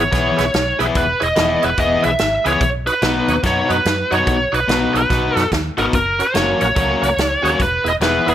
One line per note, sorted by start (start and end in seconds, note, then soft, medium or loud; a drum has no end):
0.00 0.77 C#5 medium
0.12 0.30 B1 loud
0.12 0.43 E3 medium
0.12 0.43 B3 medium
0.12 0.43 E4 medium
0.12 0.43 G#4 medium
0.12 kick loud
0.12 snare soft
0.12 closed hi-hat medium
0.37 0.49 B1 medium
0.37 0.45 E4 medium
0.37 0.45 G#4 medium
0.37 0.45 B4 medium
0.37 snare soft
0.37 closed hi-hat medium
0.54 0.71 B1 loud
0.54 snare loud
0.54 closed hi-hat medium
0.79 0.90 B1 medium
0.79 1.03 E3 medium
0.79 1.03 B3 medium
0.79 0.87 E4 loud
0.79 1.03 E4 medium
0.79 0.87 G#4 loud
0.79 1.03 G#4 medium
0.79 0.87 B4 loud
0.79 closed hi-hat medium
0.95 1.13 E1 medium
0.95 1.23 B4 loud
0.95 kick loud
0.95 closed hi-hat medium
1.20 1.32 E1 medium
1.20 1.28 E4 medium
1.20 1.28 G#4 medium
1.20 1.28 C#5 medium
1.20 1.65 D#5 loud
1.20 closed hi-hat medium
1.36 1.55 E1 medium
1.36 1.67 E3 medium
1.36 1.67 B3 medium
1.36 1.68 E4 medium
1.36 1.68 G#4 medium
1.36 snare loud
1.36 closed hi-hat medium
1.62 1.74 E1 medium
1.62 1.70 E4 medium
1.62 1.70 G#4 medium
1.62 1.79 B4 medium
1.62 1.70 C#5 medium
1.62 closed hi-hat medium
1.77 1.95 E1 loud
1.77 2.09 E3 medium
1.77 2.09 B3 medium
1.77 2.09 E4 medium
1.77 2.09 G#4 loud
1.77 2.03 D#5 loud
1.77 kick loud
1.77 closed hi-hat medium
2.02 2.15 B1 medium
2.02 2.11 E4 medium
2.02 2.11 G#4 medium
2.02 2.11 B4 medium
2.02 2.43 E5 loud
2.02 closed hi-hat medium
2.19 2.37 G#1 medium
2.19 snare loud
2.19 closed hi-hat medium
2.44 2.56 C#2 medium
2.44 2.62 E3 medium
2.44 2.61 B3 medium
2.44 2.53 E4 medium
2.44 2.61 E4 medium
2.44 2.53 G#4 medium
2.44 2.61 G#4 loud
2.44 2.53 B4 medium
2.44 2.60 C#5 loud
2.44 closed hi-hat medium
2.61 2.89 B1 medium
2.61 2.68 C#5 loud
2.61 kick loud
2.61 closed hi-hat medium
2.87 2.95 D#4 medium
2.87 2.95 F#4 medium
2.87 3.40 B4 loud
2.87 2.95 B4 medium
2.87 closed hi-hat medium
3.02 3.20 B1 medium
3.02 3.33 B2 medium
3.02 3.34 B3 medium
3.02 3.34 D#4 medium
3.02 3.34 F#4 medium
3.02 snare loud
3.02 closed hi-hat medium
3.28 3.38 D#2 medium
3.28 3.36 D#4 medium
3.28 3.36 F#4 medium
3.28 3.36 C#5 medium
3.28 closed hi-hat medium
3.43 3.61 F#2 medium
3.43 3.74 B2 medium
3.43 3.75 B3 medium
3.43 3.75 D#4 medium
3.43 3.75 F#4 loud
3.43 3.70 C#5 loud
3.43 kick loud
3.43 snare soft
3.43 closed hi-hat medium
3.69 3.80 F#2 medium
3.69 3.77 D#4 medium
3.69 3.77 F#4 medium
3.69 3.77 B4 medium
3.69 4.14 B4 loud
3.69 closed hi-hat medium
3.85 4.03 F#2 medium
3.85 snare loud
3.85 closed hi-hat medium
4.10 4.22 F#2 medium
4.10 4.35 B2 medium
4.10 4.35 B3 medium
4.10 4.19 D#4 medium
4.10 4.35 D#4 medium
4.10 4.19 F#4 medium
4.10 4.35 F#4 loud
4.10 4.19 C#5 loud
4.10 4.55 C#5 medium
4.10 closed hi-hat medium
4.27 4.45 B1 medium
4.27 kick loud
4.27 closed hi-hat medium
4.52 4.63 B1 medium
4.52 4.60 D#4 medium
4.52 4.60 F#4 medium
4.52 4.93 B4 loud
4.52 4.60 C#5 medium
4.52 closed hi-hat medium
4.67 4.85 B1 medium
4.67 4.99 B2 medium
4.67 4.99 B3 medium
4.67 5.00 D#4 medium
4.67 5.00 F#4 medium
4.67 snare loud
4.67 closed hi-hat medium
4.93 5.05 B1 medium
4.93 5.02 D#4 medium
4.93 5.02 F#4 medium
4.93 5.02 G#4 medium
4.93 5.37 B4 medium
4.93 closed hi-hat medium
5.10 5.28 B1 medium
5.10 5.41 B2 medium
5.10 5.41 B3 medium
5.10 5.41 D#4 medium
5.10 5.41 F#4 medium
5.10 kick loud
5.10 snare soft
5.10 closed hi-hat medium
5.36 5.46 F#2 medium
5.36 5.44 D#4 medium
5.36 5.44 F#4 medium
5.36 5.49 A4 medium
5.36 5.44 B4 medium
5.36 snare soft
5.36 closed hi-hat medium
5.52 5.69 D#2 loud
5.52 kick medium
5.52 snare loud
5.52 closed hi-hat medium
5.77 5.88 G#1 medium
5.77 5.94 B2 medium
5.77 5.93 B3 medium
5.77 5.86 D#4 medium
5.77 5.93 D#4 medium
5.77 5.93 F#4 medium
5.77 5.85 F#4 medium
5.77 5.85 A4 medium
5.77 5.84 A#4 medium
5.77 closed hi-hat medium
5.93 6.21 F#1 medium
5.93 6.21 A#4 medium
5.93 kick loud
5.93 closed hi-hat medium
6.19 6.27 C#4 medium
6.19 6.27 F#4 medium
6.19 6.27 A#4 medium
6.19 6.60 C#5 loud
6.19 closed hi-hat medium
6.34 6.52 F#1 medium
6.34 6.65 F#3 medium
6.34 6.66 A#3 medium
6.34 6.66 C#4 medium
6.34 6.66 F#4 medium
6.34 snare loud
6.34 closed hi-hat medium
6.61 6.72 A#1 medium
6.61 6.69 C#4 medium
6.61 6.69 F#4 medium
6.61 6.69 A#4 medium
6.61 7.63 C#5 loud
6.61 closed hi-hat medium
6.76 6.94 C#2 loud
6.76 7.07 F#3 medium
6.76 7.07 A#3 medium
6.76 7.07 C#4 medium
6.76 7.07 F#4 medium
6.76 kick loud
6.76 closed hi-hat medium
7.02 7.12 C#2 medium
7.02 7.10 C#4 medium
7.02 7.10 F#4 medium
7.02 7.10 A#4 medium
7.02 closed hi-hat medium
7.17 7.35 C#2 medium
7.17 snare loud
7.17 closed hi-hat medium
7.42 7.54 D#2 medium
7.42 7.60 F#3 medium
7.42 7.60 A#3 medium
7.42 7.51 C#4 loud
7.42 7.60 C#4 loud
7.42 7.51 F#4 medium
7.42 7.59 F#4 medium
7.42 7.51 G#4 loud
7.42 closed hi-hat medium
7.60 7.77 E1 medium
7.60 7.88 B4 medium
7.60 kick loud
7.60 closed hi-hat medium
7.84 7.95 E1 medium
7.84 7.92 B3 medium
7.84 7.92 E4 medium
7.84 7.93 G#4 medium
7.84 closed hi-hat medium
7.88 7.93 D#5 loud
8.00 8.18 E1 medium
8.00 8.32 E3 medium
8.00 8.32 B3 medium
8.00 8.32 E4 medium
8.00 8.32 G#4 medium
8.00 8.29 B4 medium
8.00 snare loud
8.00 closed hi-hat medium
8.26 8.35 E1 medium
8.26 8.34 B3 medium
8.26 8.34 E4 medium
8.26 8.35 G#4 medium
8.26 8.34 B4 medium
8.26 closed hi-hat medium